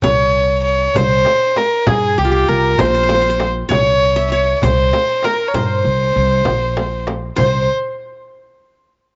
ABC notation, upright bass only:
X:1
M:6/8
L:1/8
Q:3/8=65
K:none
V:1 name="Upright bass" clef=bass
C,,3 C,, z2 | G,, C,, C,, _B,,,3 | C,,3 C,, z2 | G,, C,, C,, _B,,,3 |
C,, z4 z |]